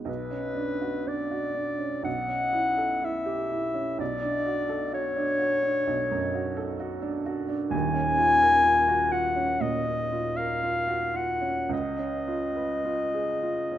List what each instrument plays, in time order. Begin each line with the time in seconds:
Already playing: grand piano G#3 B3 D#4 F#4
0.05 grand piano B1, clarinet B4
0.31 grand piano C#4
0.55 grand piano D4
0.81 grand piano F#4
1.07 grand piano D4, clarinet D5
1.31 grand piano F#4
1.54 grand piano D4
1.78 grand piano C#4
2.03 grand piano B1, clarinet F#5
2.28 grand piano C#4
2.53 grand piano E4
2.77 grand piano A4
3.02 grand piano E4, clarinet E5
3.26 grand piano G4
3.51 grand piano E4
3.74 grand piano C#4
3.98 grand piano B1, clarinet D5
4.22 grand piano D4
4.46 grand piano F#4
4.69 grand piano A4
4.93 grand piano F#4, clarinet C#5
5.16 grand piano D4
5.39 grand piano F#4
5.62 grand piano D4
5.87 grand piano B1
6.11 grand piano F#2
6.35 grand piano F#4
6.57 grand piano A4
6.80 grand piano F#4
7.02 grand piano D4
7.26 grand piano F#4
7.48 grand piano D4
7.70 grand piano D#1 D#2, clarinet G#5
7.94 grand piano C#4
8.18 grand piano F4
8.41 grand piano A#4
8.63 grand piano F4
8.88 grand piano F#4
9.11 grand piano F4, clarinet F#5
9.36 grand piano C#4
9.60 grand piano A#2, clarinet D#5
9.86 grand piano C#4
10.12 grand piano F4
10.37 grand piano A#4, clarinet F5
10.63 grand piano F4
10.87 grand piano F#4
11.14 grand piano F4, clarinet F#5
11.41 grand piano C#4
11.69 grand piano C#2, clarinet D#5
11.98 grand piano C#4
12.28 grand piano F4
12.56 grand piano B4
12.85 grand piano F4
13.14 grand piano G#4
13.43 grand piano F4
13.72 grand piano C#4